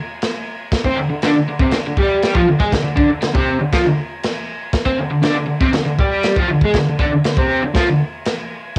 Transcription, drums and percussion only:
0.22 snare, crash
0.72 kick, snare, crash
0.85 kick
1.22 snare, crash
1.59 kick
1.71 snare, crash
1.97 kick
2.23 snare, crash
2.35 kick
2.60 kick
2.72 kick, snare, crash
2.97 kick
3.22 snare, crash
3.35 kick
3.72 kick, snare, crash
4.23 snare, crash
4.73 kick, snare, crash
4.85 kick
5.23 snare, crash
5.61 kick
5.73 snare, crash
5.98 kick
6.23 snare, crash
6.36 kick
6.61 kick
6.74 kick, snare, crash
6.99 kick
7.24 snare, crash
7.37 kick
7.75 kick, snare, crash
8.25 snare, crash

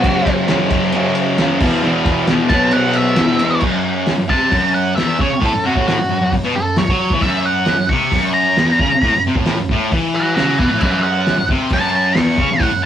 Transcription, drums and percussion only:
0.04 kick, ride
0.26 kick, snare, ride
0.48 snare, ride
0.70 kick, ride
0.92 ride
1.15 ride
1.38 snare, ride
1.60 kick, crash
2.05 kick, snare, ride
2.27 snare, ride
2.50 kick, ride
2.71 ride
2.93 ride
3.16 snare, ride
3.39 ride
3.60 kick, crash
4.06 snare, open hi-hat
4.29 kick
4.52 kick, open hi-hat
4.98 snare, open hi-hat
5.19 kick
5.42 kick, open hi-hat
5.76 kick
5.88 snare, open hi-hat
6.32 kick, open hi-hat
6.76 snare, open hi-hat
6.88 kick
7.10 kick
7.21 kick, open hi-hat
7.66 snare, open hi-hat
7.89 kick
8.12 kick, open hi-hat
8.57 snare, open hi-hat
8.79 kick
9.02 kick, open hi-hat
9.35 kick
9.46 snare, open hi-hat
9.69 kick
9.92 kick, open hi-hat
10.37 snare, open hi-hat
10.59 kick
10.81 kick, crash
11.26 snare, open hi-hat
11.49 kick
11.70 kick, open hi-hat
12.15 snare, open hi-hat
12.38 kick
12.60 kick, open hi-hat

